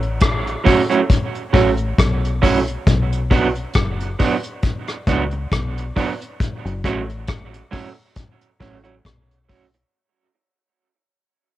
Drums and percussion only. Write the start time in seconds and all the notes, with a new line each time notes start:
0.02 closed hi-hat
0.20 kick, cross-stick, closed hi-hat
0.47 closed hi-hat
0.66 kick, open hi-hat
0.91 closed hi-hat
1.09 kick, closed hi-hat
1.35 closed hi-hat
1.54 kick, open hi-hat
1.77 closed hi-hat
1.99 kick, cross-stick, closed hi-hat
2.24 closed hi-hat
2.43 kick, open hi-hat
2.67 closed hi-hat
2.87 kick, closed hi-hat
3.12 closed hi-hat
3.31 kick, open hi-hat
3.55 closed hi-hat
3.73 kick, cross-stick, closed hi-hat
4.00 closed hi-hat
4.19 kick, open hi-hat
4.43 closed hi-hat
4.62 kick, closed hi-hat
4.87 cross-stick, closed hi-hat
5.07 kick, closed hi-hat
5.31 closed hi-hat
5.52 kick, cross-stick, closed hi-hat
5.77 closed hi-hat
5.96 kick, open hi-hat
6.21 closed hi-hat
6.40 kick, closed hi-hat
6.66 closed hi-hat
6.84 kick, closed hi-hat
7.09 closed hi-hat
7.27 kick, cross-stick, closed hi-hat
7.54 closed hi-hat
7.73 kick, open hi-hat
8.16 kick, closed hi-hat
8.41 closed hi-hat
8.61 kick, open hi-hat
8.84 closed hi-hat
9.05 kick, cross-stick, closed hi-hat
9.31 closed hi-hat
9.49 kick, open hi-hat
9.74 closed hi-hat